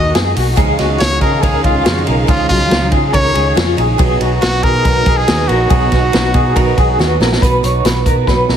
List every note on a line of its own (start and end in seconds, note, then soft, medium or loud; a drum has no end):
0.00 0.11 D#2 medium
0.00 0.54 A#3 medium
0.00 0.54 D#4 medium
0.00 0.14 F#4 medium
0.00 0.53 F#4 medium
0.00 0.12 D#5 loud
0.15 0.33 F#2 medium
0.15 0.36 G#4 medium
0.15 snare loud
0.15 ride medium
0.36 0.54 B1 loud
0.36 0.57 F#4 medium
0.36 open hi-hat medium
0.36 ride medium
0.56 0.75 C#2 loud
0.56 0.78 C#3 loud
0.56 3.97 C#3 medium
0.56 3.97 D#3 medium
0.56 0.78 F3 medium
0.56 0.78 G#3 medium
0.56 3.96 G#3 medium
0.56 3.96 C#4 medium
0.56 0.78 D#4 loud
0.56 0.79 G#4 medium
0.56 3.96 F5 medium
0.56 kick loud
0.56 hi-hat pedal medium
0.56 ride medium
0.79 0.97 C#2 loud
0.79 0.99 F3 medium
0.79 1.00 G#3 medium
0.79 1.00 D#4 medium
0.79 1.19 F#4 medium
0.79 snare soft
0.79 ride medium
1.00 1.18 C#2 loud
1.00 1.21 C#3 medium
1.00 1.22 F3 medium
1.00 1.21 G#3 medium
1.00 1.20 D#4 medium
1.00 1.20 C#5 loud
1.00 snare loud
1.00 ride medium
1.21 1.39 C#3 loud
1.21 1.41 F3 soft
1.21 1.42 G#3 soft
1.21 1.43 D#4 medium
1.21 1.42 G#4 medium
1.21 1.44 A#4 medium
1.21 kick medium
1.21 ride medium
1.42 1.61 C#2 loud
1.42 1.64 C#3 medium
1.42 1.64 F3 medium
1.42 1.64 G#3 medium
1.42 1.63 D#4 medium
1.42 1.64 G#4 loud
1.42 1.63 A#4 medium
1.42 kick medium
1.42 ride medium
1.63 1.82 C#2 loud
1.63 1.84 F3 soft
1.63 1.85 G#3 medium
1.63 1.86 D#4 medium
1.63 2.04 F4 medium
1.63 1.85 G#4 medium
1.63 kick medium
1.63 ride medium
1.84 2.03 F2 loud
1.84 2.06 C#3 medium
1.84 2.07 F3 medium
1.84 2.07 G#3 medium
1.84 2.06 D#4 medium
1.84 2.06 F#4 medium
1.84 snare loud
1.84 ride medium
2.06 2.25 B1 loud
2.06 2.27 F3 medium
2.06 2.27 G#3 medium
2.06 2.28 D#4 medium
2.06 2.28 A#4 medium
2.06 ride medium
2.27 2.46 C#2 medium
2.27 2.49 C#3 medium
2.27 2.50 F3 medium
2.27 2.50 G#3 medium
2.27 2.49 D#4 medium
2.27 2.48 F4 loud
2.27 2.50 G#4 loud
2.27 kick loud
2.27 ride medium
2.49 2.67 C#2 medium
2.49 2.70 F3 soft
2.49 2.90 F#3 medium
2.49 2.71 G#3 medium
2.49 2.72 D#4 medium
2.49 2.89 F4 loud
2.49 kick medium
2.49 ride medium
2.70 2.89 C#2 medium
2.70 2.92 C#3 medium
2.70 2.93 F3 medium
2.70 2.92 G#3 medium
2.70 2.90 D#4 medium
2.70 snare loud
2.70 ride medium
2.92 3.10 C#3 loud
2.92 3.13 F3 soft
2.92 3.13 G#3 medium
2.92 3.13 D#4 soft
2.92 3.13 G#4 medium
2.92 kick medium
2.92 ride medium
3.13 3.31 C#2 loud
3.13 3.35 C#3 medium
3.13 3.36 F3 medium
3.13 3.35 G#3 medium
3.13 3.33 D#4 medium
3.13 3.34 A#4 loud
3.13 3.54 C#5 loud
3.13 kick medium
3.13 ride medium
3.34 3.53 C#2 medium
3.34 3.55 F3 soft
3.34 3.56 G#3 soft
3.34 3.56 D#4 medium
3.34 3.56 G#4 loud
3.34 ride medium
3.55 3.74 F2 loud
3.55 3.77 C#3 medium
3.55 3.78 F3 medium
3.55 3.78 G#3 medium
3.55 3.76 D#4 medium
3.55 3.78 F4 medium
3.55 snare loud
3.55 ride medium
3.77 3.95 A#1 loud
3.77 3.99 F3 medium
3.77 3.99 G#3 medium
3.77 3.99 D#4 medium
3.77 3.97 G#4 medium
3.77 ride medium
3.98 4.17 B1 loud
3.98 4.20 B2 medium
3.98 7.37 F#3 medium
3.98 4.21 F#3 loud
3.98 7.37 B3 medium
3.98 4.21 B3 loud
3.98 7.37 D#4 medium
3.98 4.20 D#4 loud
3.98 4.20 G#4 loud
3.98 kick loud
3.98 ride medium
4.21 4.38 B1 loud
4.21 4.43 F#3 medium
4.21 4.43 B3 medium
4.21 4.43 D#4 medium
4.21 4.61 F#4 medium
4.21 ride medium
4.42 4.60 B1 loud
4.42 4.64 B2 medium
4.42 4.64 F#3 medium
4.42 4.64 B3 medium
4.42 4.63 D#4 medium
4.42 4.65 F#4 loud
4.42 snare loud
4.42 ride medium
4.63 4.81 B2 loud
4.63 4.86 F#3 soft
4.63 4.86 B3 medium
4.63 4.85 D#4 medium
4.63 4.84 G#4 medium
4.63 5.19 A#4 loud
4.63 kick medium
4.63 ride medium
4.84 5.02 B1 loud
4.84 5.07 B2 medium
4.84 5.07 F#3 medium
4.84 5.06 B3 medium
4.84 5.05 D#4 medium
4.84 5.06 A#4 medium
4.84 kick medium
4.84 ride medium
5.06 5.24 B1 medium
5.06 5.28 F#3 soft
5.06 5.28 B3 soft
5.06 5.28 D#4 medium
5.06 5.27 G#4 medium
5.06 kick loud
5.06 ride medium
5.17 5.49 G#4 loud
5.27 5.46 D#2 loud
5.27 5.49 B2 medium
5.27 5.50 F#3 medium
5.27 5.50 B3 medium
5.27 5.47 D#4 medium
5.27 5.48 F#4 medium
5.27 snare loud
5.27 ride medium
5.48 5.66 A#1 loud
5.48 5.70 F#3 medium
5.48 5.70 B3 medium
5.48 5.70 D#4 medium
5.48 7.19 F#4 medium
5.48 5.70 A#4 medium
5.48 ride medium
5.70 5.88 B1 loud
5.70 5.91 B2 medium
5.70 5.92 F#3 medium
5.70 5.91 B3 medium
5.70 5.90 D#4 medium
5.70 5.91 G#4 loud
5.70 kick loud
5.70 ride medium
5.91 6.10 B1 loud
5.91 6.12 F#3 soft
5.91 6.13 B3 medium
5.91 6.13 D#4 medium
5.91 6.32 F#4 medium
5.91 kick medium
5.91 snare soft
5.91 ride medium
6.12 6.31 B1 loud
6.12 6.34 B2 medium
6.12 6.34 F#3 medium
6.12 6.34 B3 medium
6.12 6.33 D#4 medium
6.12 snare loud
6.12 ride medium
6.34 6.52 B2 loud
6.34 6.56 F#3 soft
6.34 6.56 B3 medium
6.34 6.56 D#4 medium
6.34 6.55 G#4 medium
6.34 kick medium
6.34 ride medium
6.56 6.73 B1 loud
6.56 6.77 B2 medium
6.56 6.78 F#3 medium
6.56 6.78 B3 medium
6.56 6.76 D#4 medium
6.56 6.77 A#4 medium
6.56 kick loud
6.56 ride medium
6.77 6.95 B1 loud
6.77 6.99 F#3 soft
6.77 7.00 B3 soft
6.77 6.99 D#4 medium
6.77 6.99 G#4 medium
6.77 kick medium
6.77 ride medium
6.99 7.16 D#2 medium
6.99 7.20 B2 medium
6.99 7.21 F#3 medium
6.99 7.21 B3 medium
6.99 7.19 D#4 medium
6.99 7.21 F#4 medium
6.99 snare medium
7.20 7.38 A#1 loud
7.20 7.43 B3 medium
7.20 7.42 D#4 medium
7.20 7.42 A#4 medium
7.20 snare loud
7.24 7.42 F#3 medium
7.32 snare medium
7.42 7.60 B1 loud
7.42 7.63 B2 medium
7.42 7.64 F#3 medium
7.42 7.64 B3 loud
7.42 7.62 D#4 loud
7.42 7.63 B4 medium
7.42 kick loud
7.42 closed hi-hat medium
7.63 7.81 B1 loud
7.63 7.85 F#3 soft
7.63 7.85 B3 medium
7.63 7.84 D#4 medium
7.63 7.85 C#5 medium
7.63 closed hi-hat medium
7.85 8.02 B1 medium
7.85 8.06 B2 medium
7.85 8.07 F#3 medium
7.85 8.06 B3 medium
7.85 8.05 D#4 medium
7.85 8.06 B4 medium
7.85 snare loud
7.85 closed hi-hat medium
8.06 8.23 B2 loud
8.06 8.28 F#3 soft
8.06 8.28 B3 medium
8.06 8.27 D#4 medium
8.06 8.27 A#4 medium
8.06 kick medium
8.06 closed hi-hat medium
8.27 8.45 B1 medium
8.27 8.49 B2 medium
8.27 8.50 F#3 medium
8.27 8.50 B3 medium
8.27 8.49 D#4 medium
8.27 8.49 B4 medium
8.27 kick medium
8.27 snare medium
8.49 8.57 B1 loud
8.49 8.57 F#3 soft
8.49 8.57 B3 medium
8.49 8.57 D#4 medium
8.49 8.57 A#4 medium
8.49 snare medium